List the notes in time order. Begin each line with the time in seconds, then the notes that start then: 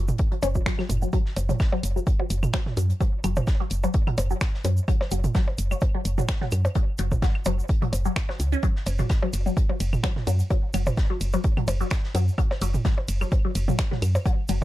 Already playing: F#1
0.08 mid tom, shaker
0.18 kick, closed hi-hat, shaker
0.32 F#3, closed hi-hat
0.42 F#1 C#4, closed hi-hat, percussion blips, shaker
0.55 F#3, kick, shaker
0.66 F#3, finger snap, kick, snare, closed hi-hat, shaker
0.79 F#3, snare, claves
0.89 F#1, closed hi-hat, mid tom, shaker
1.02 F#3, shaker
1.13 F#3, kick, closed hi-hat, shaker
1.26 snare
1.36 F#1, closed hi-hat, percussion blips, shaker
1.49 F#3, closed hi-hat, mid tom, shaker
1.59 kick, snare, closed hi-hat, claves, shaker
1.72 F#3, percussion blips
1.83 F#1, closed hi-hat, shaker
1.96 F#3, shaker
2.07 kick, closed hi-hat, shaker
2.19 F#3, percussion blips
2.30 F#1, closed hi-hat, shaker
2.43 mid tom, claves, shaker
2.53 F#3, finger snap, kick, snare, closed hi-hat, percussion blips, shaker
2.66 snare, mid tom
2.77 F#2 F#3, closed hi-hat, shaker
2.90 closed hi-hat, shaker
3.01 F#3, kick, closed hi-hat, percussion blips, shaker
3.24 F#1 F#3, closed hi-hat, claves, shaker
3.36 mid tom, percussion blips, shaker
3.47 kick, snare, closed hi-hat, shaker
3.60 F#3
3.70 F#1, closed hi-hat, shaker
3.84 F#3, percussion blips, shaker
3.94 kick, closed hi-hat, shaker
4.07 F#3, closed hi-hat, mid tom, claves
4.18 F#1, closed hi-hat, percussion blips, shaker
4.30 F#3, shaker
4.41 finger snap, kick, snare, closed hi-hat, shaker
4.54 snare
4.65 F#2 F#3, closed hi-hat, percussion blips, shaker
4.77 shaker
4.88 F#3, kick, closed hi-hat, claves, shaker
5.01 snare, percussion blips
5.11 F#1 F#3, closed hi-hat, shaker
5.24 closed hi-hat, mid tom, shaker
5.35 F#3, kick, snare, closed hi-hat, shaker
5.48 percussion blips
5.58 F#1, closed hi-hat, shaker
5.71 F#3, claves, shaker
5.81 kick, closed hi-hat, percussion blips, shaker
5.95 F#3
6.05 F#1, closed hi-hat, shaker
6.18 F#3, mid tom, shaker
6.28 finger snap, kick, snare, closed hi-hat, percussion blips, shaker
6.41 F#3, snare, mid tom
6.51 F#2, closed hi-hat, claves, shaker
6.65 closed hi-hat, percussion blips, shaker
6.75 F#3, kick, closed hi-hat, shaker
6.98 F#1 F#3, closed hi-hat, shaker
7.12 kick, mid tom, percussion blips, shaker
7.22 F#3, kick, snare, closed hi-hat, shaker
7.35 claves
7.45 F#1 F#3, closed hi-hat, percussion blips, shaker
7.59 shaker
7.68 kick, closed hi-hat, shaker
7.82 F#3, closed hi-hat, mid tom
7.93 F#1, closed hi-hat, percussion blips, shaker
8.05 F#3, shaker
8.16 finger snap, kick, snare, closed hi-hat, claves, shaker
8.29 F#3, snare, percussion blips
8.40 C#2, closed hi-hat, shaker
8.52 C#4, shaker
8.63 F#3, kick, closed hi-hat, shaker
8.76 snare
8.86 F#1, closed hi-hat, ride, percussion blips, shaker
8.99 F#3, closed hi-hat, mid tom, shaker
9.09 kick, snare, closed hi-hat, claves, shaker
9.23 F#3, percussion blips
9.33 F#1, closed hi-hat, ride, shaker
9.46 F#3, shaker
9.57 kick, closed hi-hat, shaker
9.69 F#3, percussion blips
9.80 F#1, closed hi-hat, ride, shaker
9.93 mid tom, claves, shaker
10.03 F#3, finger snap, kick, snare, closed hi-hat, percussion blips, shaker
10.16 snare, mid tom
10.27 F#2 F#3, closed hi-hat, ride, shaker
10.39 closed hi-hat, shaker
10.50 F#3, kick, closed hi-hat, percussion blips, shaker
10.74 F#1 F#3, closed hi-hat, ride, claves, shaker
10.86 mid tom, percussion blips, shaker
10.97 kick, snare, closed hi-hat, shaker
11.10 F#3
11.21 F#1, closed hi-hat, ride, shaker
11.33 F#3, percussion blips, shaker
11.44 kick, closed hi-hat, shaker
11.57 F#3, closed hi-hat, mid tom, claves
11.68 F#1, closed hi-hat, ride, percussion blips, shaker
11.81 F#3, shaker
11.90 finger snap, kick, snare, closed hi-hat, shaker
12.04 snare
12.15 F#2 F#3, closed hi-hat, ride, percussion blips, shaker
12.28 shaker
12.38 F#3, kick, closed hi-hat, claves, shaker
12.51 snare, percussion blips
12.61 F#1 F#3, closed hi-hat, ride, shaker
12.74 closed hi-hat, mid tom, shaker
12.85 F#3, kick, snare, closed hi-hat, shaker
12.98 percussion blips
13.08 F#1, closed hi-hat, ride, shaker
13.21 F#3, claves, shaker
13.32 kick, closed hi-hat, percussion blips, shaker
13.45 F#3
13.55 F#1, closed hi-hat, ride, shaker
13.68 F#3, mid tom, shaker
13.79 finger snap, kick, snare, closed hi-hat, percussion blips, shaker
13.91 F#3, snare, mid tom
14.02 F#2, closed hi-hat, ride, claves, shaker
14.15 closed hi-hat, percussion blips, shaker
14.25 F#3, kick, closed hi-hat, shaker
14.48 F#1 F#3, closed hi-hat, ride, shaker